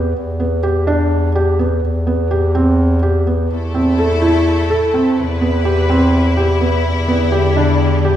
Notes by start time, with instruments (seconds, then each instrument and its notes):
Already playing: bass clarinet E2, felt piano B3
0.16 bass clarinet E2
0.40 felt piano B3
0.63 felt piano G4
0.87 felt piano D4
1.35 felt piano G4
1.59 felt piano B3
1.83 bass clarinet E2
2.07 felt piano B3
2.31 felt piano G4
2.55 felt piano C4
3.03 felt piano G4
3.27 felt piano B3
3.51 bass clarinet E2, string section A3 E4 A4
3.74 felt piano C4
3.99 felt piano A4
4.22 felt piano E4
4.70 felt piano A4
4.94 felt piano C4
5.18 bass clarinet E2, string section C3 E4 B4
5.41 felt piano B3
5.65 felt piano G4
5.90 felt piano C4
6.37 felt piano G4
6.61 felt piano B3
6.85 bass clarinet E2, string section D3 G3
7.08 felt piano B3
7.32 felt piano G4
7.56 felt piano D4
8.05 felt piano G4